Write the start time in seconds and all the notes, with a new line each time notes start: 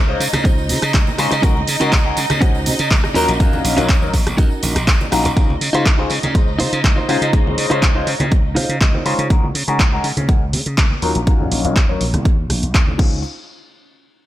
Already playing: C#2 D#4 D#5
0.08 G#3 C#4 D#4 F4 C5, muted clean electric guitar stroke
0.20 C#3, open hi-hat, tambourine
0.33 C#3, cross-stick, closed hi-hat, tambourine, high conga
0.44 C#2 C#4 D#4 F4 C5, kick, closed hi-hat, tambourine
0.58 tambourine
0.69 C#3, open hi-hat, tambourine, high conga
0.82 C#3, cross-stick, closed hi-hat, tambourine
0.94 C#2, kick, clap, closed hi-hat, tambourine
1.07 tambourine, high conga
1.18 C#3 G#3 C#4 D#4 F4 C5, muted clean electric guitar stroke, cross-stick, open hi-hat, tambourine
1.31 C#3, muted clean electric guitar stroke, closed hi-hat, tambourine
1.42 C#2 G#3 C#4 D#4 F#4 A#4, kick, closed hi-hat, tambourine
1.57 high conga
1.67 C#3, muted clean electric guitar stroke, open hi-hat, tambourine
1.80 C#3 G#3 C#4 D#4 F#4 A#4, closed hi-hat, tambourine
1.92 C#2, kick, clap, closed hi-hat, tambourine, high conga
2.05 G#3 C#4 D#4 F#4 A#4, muted clean electric guitar stroke
2.17 C#3, open hi-hat, tambourine
2.30 C#3, cross-stick, closed hi-hat, tambourine, high conga
2.41 C#2 G#3 C#4 D#4 F#4 A#4 C5, kick, closed hi-hat, tambourine
2.55 tambourine
2.66 C#3, open hi-hat, tambourine, high conga
2.79 C#3, closed hi-hat, tambourine
2.91 C#2, kick, clap, closed hi-hat, tambourine
3.04 cross-stick, tambourine, high conga
3.14 D#2 F#3 C#4 D#4 F4 F#4 A#4, open hi-hat, tambourine
3.29 A#1, closed hi-hat, tambourine
3.40 D#2 F#3 C#4 D#4 A#4 F5, kick, closed hi-hat, tambourine
3.53 tambourine, high conga
3.64 A#1, muted clean electric guitar stroke, open hi-hat, tambourine
3.77 A#1 F#3 C#4 D#4 F4 F#4 A#4, closed hi-hat, tambourine
3.89 D#2, kick, clap, closed hi-hat, tambourine, high conga
4.01 F#3 C#4 D#4 F4 A#4, muted clean electric guitar stroke, tambourine
4.14 A#1, kick, open hi-hat, tambourine
4.27 A#1, cross-stick, closed hi-hat, tambourine, high conga
4.37 D#2 C#4 D#4 F#4 A#4, kick, closed hi-hat, tambourine
4.50 muted slap bass stroke, tambourine
4.63 A#1, open hi-hat, tambourine, high conga
4.76 A#1, cross-stick, closed hi-hat, tambourine
4.87 D#2, kick, clap, closed hi-hat, tambourine
5.01 tambourine, high conga
5.11 A#1 F#3 C#4 D#4 F4 A#4, muted clean electric guitar stroke, cross-stick, open hi-hat, tambourine
5.24 A#1, muted clean electric guitar stroke, closed hi-hat, tambourine
5.36 G#3 C#4 D#4 F4 C5 D#5, kick, closed hi-hat, tambourine
5.50 high conga
5.61 C#3, open hi-hat, tambourine
5.73 C#3 G#3 C#4 D#4 F4 C5, closed hi-hat, tambourine
5.86 C#2, kick, clap, closed hi-hat, tambourine, high conga
5.98 G#3 C#4 D#4 F4 C5
6.10 C#3, open hi-hat, tambourine
6.22 C#3, muted clean electric guitar stroke, closed hi-hat, tambourine, high conga
6.35 C#2 G#3 C#4 D#4 F4 C5, kick, closed hi-hat, tambourine
6.48 tambourine
6.59 C#3 D#4 F4 C5, open hi-hat, tambourine, high conga
6.73 C#3, closed hi-hat, tambourine
6.84 C#2, kick, clap, closed hi-hat, tambourine
6.96 D#4 F4 C5, tambourine, high conga
7.08 C#3 G#3 C#4 D#4 F4 C5, open hi-hat, tambourine
7.22 C#3, closed hi-hat
7.33 C#2 G#3 C#4 D#4 F4 C5, kick, closed hi-hat, tambourine
7.47 high conga
7.58 C#3, open hi-hat, tambourine
7.70 C#3 G#3 C#4 D#4 F4 C5, closed hi-hat, tambourine
7.82 C#2, kick, clap, closed hi-hat, tambourine, high conga
7.95 G#3 C#4 D#4 F4 C5
8.07 C#3, open hi-hat, tambourine
8.19 C#3, muted clean electric guitar stroke, closed hi-hat, tambourine, high conga
8.32 C#2, kick, closed hi-hat
8.45 tambourine
8.55 C#3 D#4 F4 C5 F5, cross-stick, open hi-hat, tambourine, high conga
8.69 C#3, closed hi-hat, tambourine
8.81 C#2 D#5, kick, clap, closed hi-hat
8.93 D#4 F4 C5, tambourine, high conga
9.05 C#3 G#3 C#4 D#4 F4 C5 C#5, open hi-hat, tambourine
9.19 C#3, closed hi-hat
9.30 C#2 G#3 C#4 D#4 F#4 A#4, kick, closed hi-hat
9.43 high conga
9.54 C#3, open hi-hat, tambourine
9.68 C#3 G#3 C#4 D#4 F#4 A#4, closed hi-hat
9.79 C#2, kick, clap, closed hi-hat, tambourine, high conga
9.92 G#3 C#4 D#4 F#4 A#4
10.04 C#3, open hi-hat
10.17 C#3, closed hi-hat, tambourine, high conga
10.28 C#2 G#3 C#4 D#4 F#4 A#4, kick, closed hi-hat, tambourine
10.41 tambourine
10.52 C#3, open hi-hat, tambourine, high conga
10.66 C#3, closed hi-hat, tambourine
10.78 C#2, kick, clap, closed hi-hat
10.90 tambourine, high conga
11.02 D#2 F#3 C#4 D#4 F4 A#4, open hi-hat, tambourine
11.15 A#1, closed hi-hat
11.27 D#2 F#3 C#4 D#4 F4 A#4, kick, closed hi-hat
11.40 high conga, low conga
11.51 A#1, open hi-hat, tambourine
11.64 A#1 F#3 C#4 D#4 F4 A#4, closed hi-hat
11.76 D#2, kick, clap, closed hi-hat, tambourine, high conga
11.89 F#3 C#4 D#4 F4 A#4
12.01 A#1, open hi-hat
12.13 A#1, cross-stick, closed hi-hat, tambourine, high conga
12.25 D#2, kick, closed hi-hat
12.49 A#1, cross-stick, open hi-hat, tambourine, high conga
12.63 A#1, closed hi-hat, tambourine
12.74 D#2, kick, clap, closed hi-hat
12.87 tambourine, high conga
12.98 C#2 G#3 C#4 D#4 F4 C5, kick, crash